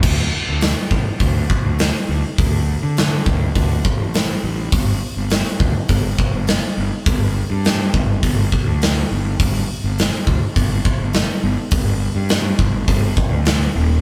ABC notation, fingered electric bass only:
X:1
M:4/4
L:1/16
Q:1/4=103
K:G
V:1 name="Fingered electric bass" clef=bass
D,,2 z D,,2 z A,,, z D,,2 z D,,2 z D,, z | D,,3 D,3 D,,2 D,,2 z A,,,3 A,,,2 | G,,,2 z G,,,2 z D,, z G,,,2 z G,,,2 z G,,, z | G,,,3 G,,3 G,,,2 G,,,2 z D,,3 G,,,2 |
G,,,2 z G,,,2 z D,, z G,,,2 z G,,,2 z G,,, z | G,,,3 G,,3 G,,,2 G,,,2 z D,,3 _E,,,2 |]